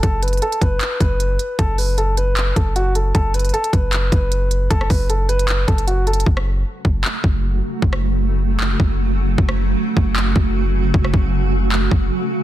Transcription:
<<
  \new Staff \with { instrumentName = "Grand piano" } { \time 4/4 \key fis \minor \tempo 4 = 154 a'8 b'8 a'8 b'4 b'4. | a'8 b'8 a'8 b'4 a'8 fis'8 a'8 | a'8 b'8 a'8 b'4 b'4. | a'8 b'8 a'8 b'4 a'8 fis'8 a'8 |
r1 | r1 | r1 | r1 | }
  \new Staff \with { instrumentName = "Ambient pad" } { \clef bass \time 4/4 \key fis \minor r1 | r1 | r1 | r1 |
<cis fis a fis'>1~ | <cis fis a fis'>1~ | <cis fis a fis'>1~ | <cis fis a fis'>1 | }
  \new Staff \with { instrumentName = "808-style bass" } { \clef bass \time 4/4 \key fis \minor fis,,4 r8 fis,,8 r8 fis,,4 r8 | fis,,2~ fis,,8 fis,,4. | fis,,4 r8 fis,,4 fis,,4. | fis,,8 fis,,2 fis,,4. |
fis,,4 r8 fis,,8 r8 fis,,4 r8 | fis,,2~ fis,,8 fis,,4. | fis,,4 r8 fis,,4 fis,,4. | fis,,8 fis,,2 fis,,8 r4 | }
  \new DrumStaff \with { instrumentName = "Drums" } \drummode { \time 4/4 <hh bd>8 <hh hho>32 hh32 hh32 hh32 hh16 hh16 <hh bd>8 <hc hh>8 <hh bd>8 hh8 hh8 | <hh bd>8 hho8 hh8 hh8 <hc hh>8 <hh bd>8 hh8 hh8 | <hh bd>8 <hh hho>32 hh32 hh32 hh32 hh16 hh16 <hh bd>8 <hc hh>8 <hh bd>8 hh8 hh8 | <hh bd>16 ss16 <hho bd>8 hh8 hh16 hh16 <hc hh>8 <hh bd>16 hh16 \tuplet 3/2 { hh16 r16 r16 hh16 hh16 hh16 } |
bd16 ss8. r8 bd8 hc8 bd8 r4 | bd16 ss8. r4 hc8 bd8 r4 | bd16 ss8. r8 bd8 hc8 bd8 r4 | bd16 ss16 bd8 r4 hc8 bd8 r4 | }
>>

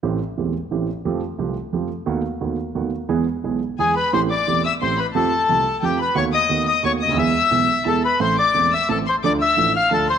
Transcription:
<<
  \new Staff \with { instrumentName = "Violin section" } { \time 3/4 \key a \minor \tempo 4 = 176 r2. | r2. | r2. | r2 gis''8 b''8 |
c'''8 d'''4 e'''8 c'''8 b''8 | a''2 g''8 b''8 | cis'''8 dis'''4 dis'''8 cis'''8 dis'''8 | e'''2 a''8 b''8 |
c'''8 d'''4 e'''8 a''8 c'''8 | d'''8 e'''4 f'''8 a''8 c'''8 | }
  \new Staff \with { instrumentName = "Bandoneon" } { \time 3/4 \key a \minor r2. | r2. | r2. | r2 gis'8 b'8 |
c''8 d''4 e''8 c''8 b'8 | a'2 g'8 b'8 | cis''8 dis''4 dis''8 cis''8 dis''8 | e''2 a'8 b'8 |
c''8 d''4 e''8 a'8 c''8 | d''8 e''4 f''8 a'8 c''8 | }
  \new Staff \with { instrumentName = "Grand piano" } { \clef bass \time 3/4 \key a \minor <a,, a, e a c' g'>8 r8 <e,, e, e a c' g'>8 r8 <a,, a, e a c' g'>8 r8 | <f, f a c' g'>8 r8 <c, c f a c' g'>8 r8 <f, f a c' g'>8 r8 | <dis, dis a b fis'>8 r8 <dis, dis a b fis'>8 r8 <dis, dis a b fis'>8 r8 | <e, e gis b gis'>8 r8 <b,, b, e gis b gis'>8 r8 <e, e gis b gis'>8 r8 |
<a,, a, e a c' g'>8 r8 <e,, e, e a c' g'>8 r8 <a,, a, e a c' g'>8 r8 | <f, f a c' g'>8 r8 <c, c f a c' g'>8 r8 <f, f a c' g'>8 r8 | <dis, dis a b fis'>8 r8 <dis, dis a b fis'>8 r8 <dis, dis a b fis'>8 r32 cis,32 d,32 dis,32 | <e, e gis b gis'>8 r8 <b,, b, e gis b gis'>8 r8 <e, e gis b gis'>8 r8 |
<a,, a, e a c' a'>8 r8 <e,, e, e a c' a'>8 r8 <a,, a, e a c' a'>8 r8 | <d, d f a d' a'>8 r8 <a,, a, f a d' a'>8 r8 <d, d f a d' a'>8 r8 | }
>>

